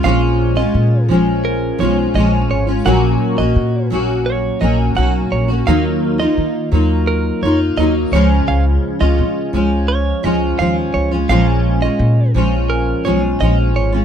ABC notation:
X:1
M:4/4
L:1/16
Q:1/4=85
K:Bbphr
V:1 name="Clean electric guitar"
f z2 e3 z2 B2 d z e z d z | g z2 e3 z2 d2 e z g z d z | f z2 e3 z2 B2 d z e z d z | f z2 e3 z2 d2 e z f z d z |
f z2 e3 z2 B2 d z e z d z |]
V:2 name="Steel-string acoustic guitar"
[B,,F,A,DF]3 [A,DF]3 [F,A,DF]4 [F,A,DF]2 [F,A,DF]3 [A,DF] | [B,,G,B,DG]3 [B,DG]3 [G,B,DG]4 [G,B,DG]2 [G,B,DG]3 [B,DG] | [E,G,B,EF]3 [B,EF]3 [G,B,EF]4 [B,EF]2 [G,B,EF]2 [D,F,A,DF]2- | [D,F,A,DF]3 [A,DF]3 [F,A,DF]4 [F,A,DF]2 [F,A,DF]3 [A,DF] |
[B,,F,A,DF]3 [A,DF]3 [F,A,DF]4 [F,A,DF]2 [F,A,DF]3 [A,DF] |]
V:3 name="Upright bass" clef=bass
B,,,4 B,,2 B,,,4 C,,2 B,,,2 A,,,2 | B,,,2 z B,,, B,,2 B,,,4 B,,,2 C,,2 B,,,2 | E,,4 E,2 E,,4 F,,2 E,,2 D,,2 | D,,2 z D,, D,2 D,,4 D,,2 E,,2 D,,2 |
B,,,4 B,,2 B,,,4 C,,2 B,,,2 A,,,2 |]